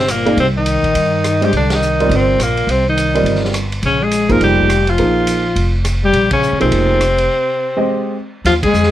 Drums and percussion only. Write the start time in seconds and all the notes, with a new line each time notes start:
0.08 cross-stick, hi-hat pedal, ride
0.26 ride
0.38 ride
0.66 hi-hat pedal, ride
0.84 ride
0.95 ride
1.24 cross-stick, hi-hat pedal, ride
1.42 ride
1.53 ride
1.70 snare, ride
1.82 hi-hat pedal
2.00 ride
2.11 ride
2.40 cross-stick, hi-hat pedal, ride
2.57 ride
2.69 ride
2.98 hi-hat pedal, ride
3.15 ride
3.26 ride
3.35 snare
3.45 snare
3.54 cross-stick, hi-hat pedal, ride
3.72 ride
3.83 ride
4.11 hi-hat pedal, ride
4.29 kick, ride
4.41 ride
4.58 kick
4.70 cross-stick, hi-hat pedal, ride
4.87 ride
4.98 ride
5.27 hi-hat pedal, ride
5.56 ride
5.85 cross-stick, hi-hat pedal, ride
6.13 ride
6.31 kick, ride
6.43 hi-hat pedal
6.61 ride
6.72 ride
7.01 cross-stick, hi-hat pedal, ride
7.18 ride
8.46 snare, ride
8.63 kick, ride
8.74 hi-hat pedal
8.83 snare